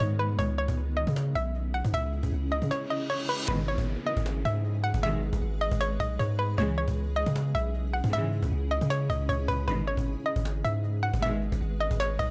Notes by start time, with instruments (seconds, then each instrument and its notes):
Already playing: ambient pad D#3 G#3 B3
0.00 808-style bass G#2, synth pluck C#5, cajon bass
0.19 synth pluck B4
0.39 808-style bass C#2, ambient pad C#3 C#4 E4 G#4, synth pluck C#5, cajon bass
0.58 synth pluck C#5, cajon slap
0.68 808-style bass C#2, cajon bass
0.78 cajon slap
0.90 cajon slap
0.97 synth pluck D#5, cajon slap
1.07 808-style bass C#3, cajon bass
1.16 cajon slap
1.35 808-style bass B1, synth pluck E5, cajon bass, cajon slap
1.55 cajon slap
1.74 synth pluck F#5, cajon slap
1.79 cajon slap
1.85 808-style bass G#2, cajon bass
1.89 cajon slap
1.94 808-style bass C#2, synth pluck E5, cajon bass
2.13 cajon slap
2.23 808-style bass C#2, cajon bass
2.32 808-style bass C#2, cajon slap
2.52 synth pluck D#5, cajon slap
2.62 808-style bass C#3, cajon bass
2.71 synth pluck C#5, cajon slap, reverse cymbal
2.90 synth pluck D#5
3.10 synth pluck C#5, cajon slap
3.29 synth pluck B4
3.48 808-style bass G#1, string section G#2 B2 D#3, ambient pad G#3 G#4 B4, synth pluck B4, cajon bass, downlifter
3.68 synth pluck C#5, cajon slap
3.78 808-style bass G#1, cajon bass
3.87 cajon slap
3.94 cajon slap
4.00 cajon slap
4.06 synth pluck D#5, cajon slap
4.17 808-style bass G#1, cajon bass
4.26 cajon slap
4.45 808-style bass G#2, synth pluck E5, cajon bass, cajon slap
4.65 cajon slap
4.84 synth pluck F#5, cajon slap
4.89 cajon slap
4.94 808-style bass G#1, cajon bass
4.99 cajon slap
5.03 string section B2 D#3 G#3, synth pluck E5, cajon bass
5.23 cajon slap
5.33 808-style bass G#1, cajon bass, cajon slap
5.42 808-style bass G#1, cajon slap
5.61 synth pluck D#5, cajon slap
5.72 808-style bass G#1, cajon bass
5.81 synth pluck C#5, cajon slap
6.00 808-style bass B1, synth pluck D#5, cajon bass
6.19 808-style bass G#2, synth pluck C#5, cajon bass
6.39 synth pluck B4
6.58 808-style bass C#2, string section C#3 E3 G#3, ambient pad C#3 C#4 E4, synth pluck C#5, cajon bass
6.78 synth pluck C#5, cajon slap
6.88 808-style bass C#2, cajon bass
6.97 cajon slap
7.03 cajon slap
7.10 cajon slap
7.16 synth pluck D#5, cajon slap
7.26 808-style bass C#3, cajon bass
7.36 cajon slap
7.55 808-style bass B1, synth pluck E5, cajon bass, cajon slap
7.74 cajon slap
7.93 synth pluck F#5, cajon slap
7.99 cajon slap
8.04 808-style bass G#2, cajon bass
8.08 cajon slap
8.13 string section C#3 E3 G#3, synth pluck E5, cajon bass
8.32 cajon slap
8.43 808-style bass C#2, cajon bass
8.52 808-style bass C#2, cajon slap
8.71 synth pluck D#5, cajon slap
8.81 808-style bass C#3, cajon bass
8.90 synth pluck C#5, cajon slap
9.10 808-style bass C#2, synth pluck D#5, cajon bass
9.29 808-style bass C#2, synth pluck C#5, cajon bass
9.48 808-style bass C#2, synth pluck B4, cajon bass
9.68 808-style bass G#1, string section G#2 B2 D#3, ambient pad G#3 B4, synth pluck B4, cajon bass
9.87 synth pluck C#5, cajon slap
9.97 808-style bass G#1, cajon bass
10.07 cajon slap
10.13 cajon slap
10.19 cajon slap
10.26 synth pluck D#5, cajon slap
10.36 808-style bass G#1, cajon bass
10.45 cajon slap
10.64 808-style bass G#2, synth pluck E5, cajon bass, cajon slap
10.84 cajon slap
11.03 synth pluck F#5, cajon slap
11.08 cajon slap
11.14 808-style bass G#1, cajon bass
11.18 cajon slap
11.22 string section B2 D#3 G#3, synth pluck E5, cajon bass
11.42 cajon slap
11.52 808-style bass G#1, cajon bass, cajon slap
11.61 808-style bass G#1, cajon slap
11.80 synth pluck D#5, cajon slap
11.91 808-style bass G#1, cajon bass
12.00 synth pluck C#5, cajon slap
12.19 808-style bass B1, synth pluck D#5, cajon bass